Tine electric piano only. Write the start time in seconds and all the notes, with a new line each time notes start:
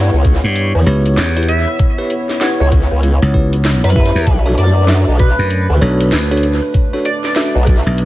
Already playing: E4 G4 B4 F#5
0.86 E4 G4 B4 C#5
1.37 E4 G4 B4 C#5
1.98 E4 G4 B4 C#5
2.41 E4 G4 B4 F#5
3.34 E4 G4 B4 C#5
3.96 E4 G4 B4 E5
4.46 D4 F#4 A4 C#5
4.89 D4 F#4 A4 E5
5.81 D4 F#4 A4 C#5
6.31 D4 F#4 A4 C#5
6.93 D4 F#4 A4 C#5
7.36 D4 F#4 A4 E5